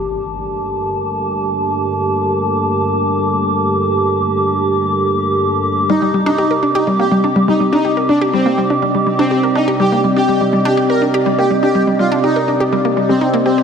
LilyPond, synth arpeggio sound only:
\new Staff \with { instrumentName = "Synth arpeggio sound" } { \time 4/4 \key c \dorian \tempo 4 = 123 r1 | r1 | r1 | g16 g16 g16 d'16 g'16 bes'16 d'16 g'16 g16 bes16 g16 d'16 g16 g16 g16 d'16 |
g'16 bes'16 d'16 g'16 g16 bes16 g16 d'16 g16 g16 g16 d'16 g'16 bes'16 d'16 g'16 | g16 bes16 g16 d'16 g16 g16 g16 d'16 g'16 bes'16 d'16 g'16 g16 bes16 g16 d'16 | g16 g16 g16 d'16 g'16 bes'16 d'16 g'16 g16 bes16 g16 g16 ees'16 bes16 g'16 g'16 | }